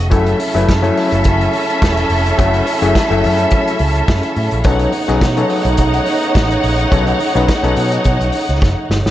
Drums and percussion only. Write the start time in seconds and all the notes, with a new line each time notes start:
0.11 kick, closed hi-hat
0.26 closed hi-hat
0.40 open hi-hat
0.56 closed hi-hat
0.69 kick, snare, closed hi-hat
0.84 closed hi-hat
0.97 open hi-hat
1.12 closed hi-hat
1.24 kick, closed hi-hat
1.41 closed hi-hat
1.53 open hi-hat
1.70 closed hi-hat
1.82 kick, snare, closed hi-hat
1.97 snare, closed hi-hat
2.10 open hi-hat
2.26 closed hi-hat
2.39 kick, closed hi-hat
2.54 closed hi-hat
2.67 open hi-hat
2.82 closed hi-hat
2.95 kick, snare, closed hi-hat
3.11 closed hi-hat
3.24 open hi-hat
3.38 closed hi-hat
3.51 kick, closed hi-hat
3.68 closed hi-hat
3.79 open hi-hat
3.95 closed hi-hat
4.08 kick, snare, closed hi-hat
4.23 snare, closed hi-hat
4.36 open hi-hat
4.51 closed hi-hat
4.64 kick, closed hi-hat
4.79 closed hi-hat
4.92 open hi-hat
5.09 closed hi-hat
5.21 kick, snare, closed hi-hat
5.37 closed hi-hat
5.50 open hi-hat
5.65 closed hi-hat
5.77 kick, closed hi-hat
5.94 closed hi-hat
6.06 open hi-hat
6.23 closed hi-hat
6.35 kick, snare, closed hi-hat
6.51 closed hi-hat
6.63 open hi-hat
6.79 closed hi-hat
6.92 kick, closed hi-hat
7.07 closed hi-hat
7.20 open hi-hat
7.36 closed hi-hat
7.48 kick, snare, closed hi-hat
7.64 closed hi-hat
7.76 open hi-hat
7.92 closed hi-hat
8.04 kick, closed hi-hat
8.21 closed hi-hat
8.32 open hi-hat
8.49 closed hi-hat
8.62 kick, snare
8.91 snare
9.06 snare